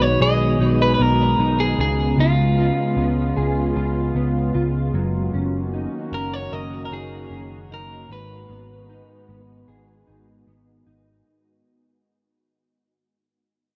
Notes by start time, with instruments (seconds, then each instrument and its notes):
Already playing: picked electric bass B1, clean electric guitar B2 B3 D#4 G#4, ambient pad D#3 G#3 B3 F#4
0.02 clean electric guitar C#5
0.21 picked electric bass B1, clean electric guitar G#4 D#5
0.60 picked electric bass B1, clean electric guitar D#4
0.82 clean electric guitar B4
0.94 clean electric guitar B4
1.00 picked electric bass B1, clean electric guitar B3 A#4
1.39 picked electric bass B1, clean electric guitar D#4
1.60 clean electric guitar G#4
1.78 picked electric bass C#2, ambient pad C#3 B3 F4, clean electric guitar C#3 G#4
2.18 picked electric bass C#2, clean electric guitar B3 F4
2.58 clean electric guitar F4
2.97 picked electric bass C#2, clean electric guitar B3
3.36 picked electric bass C#2, clean electric guitar G#4
3.76 picked electric bass C#2, clean electric guitar F4
4.15 picked electric bass C#2, clean electric guitar B3
4.54 picked electric bass C#2, clean electric guitar F4
4.94 picked electric bass F#1, ambient pad D#3 A#3 C#4 F#4, clean electric guitar F#3
5.34 picked electric bass F#1, clean electric guitar C#4
5.74 clean electric guitar D#4
6.12 picked electric bass F#1, clean electric guitar C#4 A#4
6.34 clean electric guitar C#5
6.52 picked electric bass F#1, clean electric guitar A#4 D#5
6.85 clean electric guitar A#4
6.91 picked electric bass F#1, clean electric guitar D#4 G#4
7.30 picked electric bass F#1, clean electric guitar C#4
7.70 picked electric bass F#1, clean electric guitar D#4
7.74 clean electric guitar A#4
8.09 picked electric bass G#1, clean electric guitar G#2 B4, ambient pad G#3 B3
8.50 picked electric bass G#1, clean electric guitar B3
8.89 clean electric guitar D#4
9.29 picked electric bass G#1, clean electric guitar B3
9.68 picked electric bass G#1, clean electric guitar G#4
10.07 picked electric bass G#1, clean electric guitar D#4
10.47 picked electric bass G#1, clean electric guitar B3
10.87 picked electric bass G#1, clean electric guitar D#4